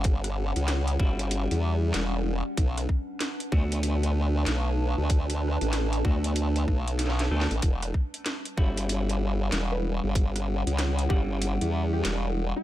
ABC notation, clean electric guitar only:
X:1
M:4/4
L:1/16
Q:"Swing 16ths" 1/4=95
K:Edor
V:1 name="Clean electric guitar"
[G,CEF]6 [G,CEF]8- [G,CEF]2 | z6 [A,B,DF]8- [A,B,DF]2- | [A,B,DF]6 [A,B,DF]4 z4 [A,B,DA] z | z6 [G,CEF]8- [G,CEF]2- |
[G,CEF]6 [G,CEf]8- [G,CEf]2 |]